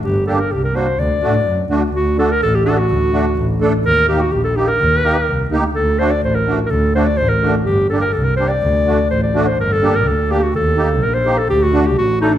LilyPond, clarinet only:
\new Staff \with { instrumentName = "Clarinet" } { \time 2/4 \tempo 4 = 126 g'8 a'16 bes'16 g'16 bes'16 c''8 | d''4. r8 | fis'8 a'16 bes'16 a'16 g'16 a'16 fis'16~ | fis'4. r8 |
bes'8 g'16 fis'16 g'16 a'16 g'16 bes'16~ | bes'4. r8 | a'8 c''16 d''16 c''16 bes'8 r32 bes'32 | a'8 c''16 d''16 c''16 bes'8 r16 |
g'8 a'16 bes'16 a'16 bes'16 c''16 d''16~ | d''4 c''16 d''8 c''16 | bes'16 a'8 bes'16 a'8 g'16 fis'16 | a'4 bes'16 c''8 a'16 |
g'16 fis'8 g'16 fis'8 ees'16 d'16 | }